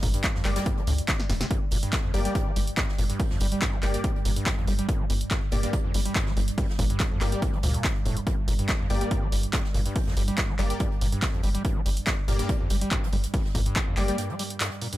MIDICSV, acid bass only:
0, 0, Header, 1, 2, 480
1, 0, Start_track
1, 0, Key_signature, -2, "minor"
1, 0, Tempo, 422535
1, 1711, Time_signature, 4, 2, 24, 8
1, 17008, End_track
2, 0, Start_track
2, 0, Title_t, "Acid bass"
2, 0, Program_c, 0, 38
2, 32, Note_on_c, 0, 46, 80
2, 101, Note_off_c, 0, 46, 0
2, 158, Note_on_c, 0, 43, 104
2, 271, Note_on_c, 0, 55, 104
2, 288, Note_off_c, 0, 43, 0
2, 313, Note_off_c, 0, 55, 0
2, 399, Note_on_c, 0, 41, 106
2, 492, Note_off_c, 0, 41, 0
2, 512, Note_on_c, 0, 55, 79
2, 581, Note_off_c, 0, 55, 0
2, 638, Note_on_c, 0, 55, 107
2, 732, Note_off_c, 0, 55, 0
2, 752, Note_on_c, 0, 43, 83
2, 878, Note_on_c, 0, 55, 101
2, 895, Note_off_c, 0, 43, 0
2, 940, Note_off_c, 0, 55, 0
2, 993, Note_on_c, 0, 45, 74
2, 1061, Note_off_c, 0, 45, 0
2, 1232, Note_on_c, 0, 50, 84
2, 1301, Note_off_c, 0, 50, 0
2, 1471, Note_on_c, 0, 43, 104
2, 1513, Note_off_c, 0, 43, 0
2, 1596, Note_on_c, 0, 48, 103
2, 1659, Note_off_c, 0, 48, 0
2, 1711, Note_on_c, 0, 43, 87
2, 1815, Note_off_c, 0, 43, 0
2, 1950, Note_on_c, 0, 46, 77
2, 2020, Note_off_c, 0, 46, 0
2, 2077, Note_on_c, 0, 43, 102
2, 2190, Note_on_c, 0, 55, 107
2, 2207, Note_off_c, 0, 43, 0
2, 2232, Note_off_c, 0, 55, 0
2, 2316, Note_on_c, 0, 41, 105
2, 2411, Note_off_c, 0, 41, 0
2, 2430, Note_on_c, 0, 55, 79
2, 2500, Note_off_c, 0, 55, 0
2, 2557, Note_on_c, 0, 55, 105
2, 2651, Note_off_c, 0, 55, 0
2, 2670, Note_on_c, 0, 43, 83
2, 2797, Note_on_c, 0, 55, 102
2, 2814, Note_off_c, 0, 43, 0
2, 2860, Note_off_c, 0, 55, 0
2, 2911, Note_on_c, 0, 55, 74
2, 2953, Note_off_c, 0, 55, 0
2, 3151, Note_on_c, 0, 43, 87
2, 3256, Note_off_c, 0, 43, 0
2, 3391, Note_on_c, 0, 46, 78
2, 3460, Note_off_c, 0, 46, 0
2, 3518, Note_on_c, 0, 43, 103
2, 3631, Note_on_c, 0, 55, 105
2, 3648, Note_off_c, 0, 43, 0
2, 3673, Note_off_c, 0, 55, 0
2, 3758, Note_on_c, 0, 41, 107
2, 3852, Note_off_c, 0, 41, 0
2, 3872, Note_on_c, 0, 55, 77
2, 3941, Note_off_c, 0, 55, 0
2, 3998, Note_on_c, 0, 55, 104
2, 4092, Note_off_c, 0, 55, 0
2, 4113, Note_on_c, 0, 43, 85
2, 4238, Note_on_c, 0, 55, 105
2, 4255, Note_off_c, 0, 43, 0
2, 4300, Note_off_c, 0, 55, 0
2, 4352, Note_on_c, 0, 55, 78
2, 4393, Note_off_c, 0, 55, 0
2, 4591, Note_on_c, 0, 43, 84
2, 4696, Note_off_c, 0, 43, 0
2, 4833, Note_on_c, 0, 46, 76
2, 4902, Note_off_c, 0, 46, 0
2, 4959, Note_on_c, 0, 43, 100
2, 5072, Note_on_c, 0, 55, 105
2, 5089, Note_off_c, 0, 43, 0
2, 5113, Note_off_c, 0, 55, 0
2, 5199, Note_on_c, 0, 41, 106
2, 5292, Note_off_c, 0, 41, 0
2, 5313, Note_on_c, 0, 55, 78
2, 5381, Note_off_c, 0, 55, 0
2, 5439, Note_on_c, 0, 55, 104
2, 5532, Note_off_c, 0, 55, 0
2, 5553, Note_on_c, 0, 43, 85
2, 5679, Note_on_c, 0, 55, 106
2, 5696, Note_off_c, 0, 43, 0
2, 5741, Note_off_c, 0, 55, 0
2, 5793, Note_on_c, 0, 55, 82
2, 5834, Note_off_c, 0, 55, 0
2, 6033, Note_on_c, 0, 43, 90
2, 6136, Note_off_c, 0, 43, 0
2, 6272, Note_on_c, 0, 46, 80
2, 6341, Note_off_c, 0, 46, 0
2, 6399, Note_on_c, 0, 43, 104
2, 6512, Note_on_c, 0, 55, 106
2, 6529, Note_off_c, 0, 43, 0
2, 6553, Note_off_c, 0, 55, 0
2, 6639, Note_on_c, 0, 41, 106
2, 6732, Note_off_c, 0, 41, 0
2, 6752, Note_on_c, 0, 55, 77
2, 6821, Note_off_c, 0, 55, 0
2, 6878, Note_on_c, 0, 55, 99
2, 6972, Note_off_c, 0, 55, 0
2, 6992, Note_on_c, 0, 43, 85
2, 7118, Note_on_c, 0, 55, 105
2, 7135, Note_off_c, 0, 43, 0
2, 7180, Note_off_c, 0, 55, 0
2, 7231, Note_on_c, 0, 55, 77
2, 7273, Note_off_c, 0, 55, 0
2, 7472, Note_on_c, 0, 43, 85
2, 7576, Note_off_c, 0, 43, 0
2, 7712, Note_on_c, 0, 46, 80
2, 7781, Note_off_c, 0, 46, 0
2, 7838, Note_on_c, 0, 43, 104
2, 7951, Note_on_c, 0, 55, 107
2, 7968, Note_off_c, 0, 43, 0
2, 7993, Note_off_c, 0, 55, 0
2, 8078, Note_on_c, 0, 41, 104
2, 8172, Note_off_c, 0, 41, 0
2, 8192, Note_on_c, 0, 55, 76
2, 8261, Note_off_c, 0, 55, 0
2, 8319, Note_on_c, 0, 55, 106
2, 8412, Note_off_c, 0, 55, 0
2, 8431, Note_on_c, 0, 43, 80
2, 8557, Note_on_c, 0, 55, 104
2, 8574, Note_off_c, 0, 43, 0
2, 8620, Note_off_c, 0, 55, 0
2, 8671, Note_on_c, 0, 46, 100
2, 8910, Note_on_c, 0, 55, 87
2, 8927, Note_off_c, 0, 46, 0
2, 8952, Note_off_c, 0, 55, 0
2, 9150, Note_on_c, 0, 45, 104
2, 9276, Note_on_c, 0, 31, 102
2, 9293, Note_off_c, 0, 45, 0
2, 9315, Note_off_c, 0, 31, 0
2, 9389, Note_on_c, 0, 43, 83
2, 9494, Note_off_c, 0, 43, 0
2, 9630, Note_on_c, 0, 46, 79
2, 9700, Note_off_c, 0, 46, 0
2, 9757, Note_on_c, 0, 43, 102
2, 9871, Note_on_c, 0, 55, 104
2, 9888, Note_off_c, 0, 43, 0
2, 9913, Note_off_c, 0, 55, 0
2, 9997, Note_on_c, 0, 41, 104
2, 10091, Note_off_c, 0, 41, 0
2, 10111, Note_on_c, 0, 55, 79
2, 10180, Note_off_c, 0, 55, 0
2, 10237, Note_on_c, 0, 55, 102
2, 10331, Note_off_c, 0, 55, 0
2, 10350, Note_on_c, 0, 43, 83
2, 10477, Note_on_c, 0, 55, 103
2, 10494, Note_off_c, 0, 43, 0
2, 10540, Note_off_c, 0, 55, 0
2, 10590, Note_on_c, 0, 55, 75
2, 10633, Note_off_c, 0, 55, 0
2, 10831, Note_on_c, 0, 43, 87
2, 10935, Note_off_c, 0, 43, 0
2, 11070, Note_on_c, 0, 46, 80
2, 11140, Note_off_c, 0, 46, 0
2, 11197, Note_on_c, 0, 43, 104
2, 11310, Note_on_c, 0, 55, 106
2, 11327, Note_off_c, 0, 43, 0
2, 11353, Note_off_c, 0, 55, 0
2, 11437, Note_on_c, 0, 41, 106
2, 11531, Note_off_c, 0, 41, 0
2, 11549, Note_on_c, 0, 55, 80
2, 11620, Note_off_c, 0, 55, 0
2, 11676, Note_on_c, 0, 55, 106
2, 11771, Note_off_c, 0, 55, 0
2, 11790, Note_on_c, 0, 43, 88
2, 11917, Note_on_c, 0, 55, 108
2, 11934, Note_off_c, 0, 43, 0
2, 11980, Note_off_c, 0, 55, 0
2, 12029, Note_on_c, 0, 55, 78
2, 12072, Note_off_c, 0, 55, 0
2, 12270, Note_on_c, 0, 43, 81
2, 12375, Note_off_c, 0, 43, 0
2, 12510, Note_on_c, 0, 46, 75
2, 12580, Note_off_c, 0, 46, 0
2, 12636, Note_on_c, 0, 43, 99
2, 12749, Note_on_c, 0, 55, 105
2, 12766, Note_off_c, 0, 43, 0
2, 12792, Note_off_c, 0, 55, 0
2, 12875, Note_on_c, 0, 41, 108
2, 12970, Note_off_c, 0, 41, 0
2, 12988, Note_on_c, 0, 55, 79
2, 13059, Note_off_c, 0, 55, 0
2, 13114, Note_on_c, 0, 55, 99
2, 13210, Note_off_c, 0, 55, 0
2, 13228, Note_on_c, 0, 43, 87
2, 13356, Note_on_c, 0, 55, 108
2, 13373, Note_off_c, 0, 43, 0
2, 13420, Note_off_c, 0, 55, 0
2, 13470, Note_on_c, 0, 55, 80
2, 13512, Note_off_c, 0, 55, 0
2, 13709, Note_on_c, 0, 43, 90
2, 13815, Note_off_c, 0, 43, 0
2, 13951, Note_on_c, 0, 46, 79
2, 14021, Note_off_c, 0, 46, 0
2, 14076, Note_on_c, 0, 43, 108
2, 14192, Note_on_c, 0, 55, 104
2, 14209, Note_off_c, 0, 43, 0
2, 14233, Note_off_c, 0, 55, 0
2, 14318, Note_on_c, 0, 41, 103
2, 14412, Note_off_c, 0, 41, 0
2, 14432, Note_on_c, 0, 55, 74
2, 14501, Note_off_c, 0, 55, 0
2, 14558, Note_on_c, 0, 55, 101
2, 14651, Note_off_c, 0, 55, 0
2, 14671, Note_on_c, 0, 43, 88
2, 14799, Note_on_c, 0, 55, 107
2, 14816, Note_off_c, 0, 43, 0
2, 14861, Note_off_c, 0, 55, 0
2, 14913, Note_on_c, 0, 55, 81
2, 14954, Note_off_c, 0, 55, 0
2, 15152, Note_on_c, 0, 43, 82
2, 15256, Note_off_c, 0, 43, 0
2, 15392, Note_on_c, 0, 46, 80
2, 15461, Note_off_c, 0, 46, 0
2, 15519, Note_on_c, 0, 43, 105
2, 15632, Note_on_c, 0, 55, 108
2, 15649, Note_off_c, 0, 43, 0
2, 15673, Note_off_c, 0, 55, 0
2, 15759, Note_on_c, 0, 41, 105
2, 15852, Note_off_c, 0, 41, 0
2, 15872, Note_on_c, 0, 55, 76
2, 15941, Note_off_c, 0, 55, 0
2, 15998, Note_on_c, 0, 55, 103
2, 16092, Note_off_c, 0, 55, 0
2, 16112, Note_on_c, 0, 43, 87
2, 16239, Note_on_c, 0, 55, 101
2, 16256, Note_off_c, 0, 43, 0
2, 16301, Note_off_c, 0, 55, 0
2, 16353, Note_on_c, 0, 55, 76
2, 16394, Note_off_c, 0, 55, 0
2, 16593, Note_on_c, 0, 43, 83
2, 16696, Note_off_c, 0, 43, 0
2, 16832, Note_on_c, 0, 46, 77
2, 16901, Note_off_c, 0, 46, 0
2, 16959, Note_on_c, 0, 43, 103
2, 17008, Note_off_c, 0, 43, 0
2, 17008, End_track
0, 0, End_of_file